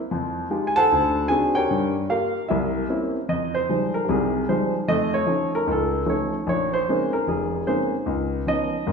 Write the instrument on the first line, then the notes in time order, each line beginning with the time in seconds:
grand piano
0.11 F2 F3
0.50 G#3 D#4 F4 G4
0.67 G#5
0.76 A4 C5 F#5 A5
0.92 D2
1.28 C4 D4 D#4 F#4 G#4 G#5
1.55 G4 A#4 C#5 G5
1.71 G2
2.09 A#3 F4 G4 A#4 F5
2.48 C2 E4 G4 A#4 E5
2.89 A#3 C4 C#4 E4
3.29 F2 D#5
3.55 C5
3.69 F3 G3 G#3 D#4
3.94 A#4
4.05 G4
4.09 C2 C3 G#4
4.49 F3 G3 G#3 D#4 C5
4.88 F2 A3 D#5
5.14 C#5
5.26 F3 A3 C#4 D#4
5.55 A#4
5.67 C#2
5.71 A4
6.06 F3 A3 C#4 D#4 C#5
6.47 A#1 C#5
6.73 C5
6.89 G#3 A#3 C4 C#4 D#4
7.13 A#4
7.27 F1 G#4
7.66 G#3 A#3 C4 C#4 D#4 C5
8.06 C#2
8.47 F3 B3 C#4 D#4 D#5
8.87 G#1 G#2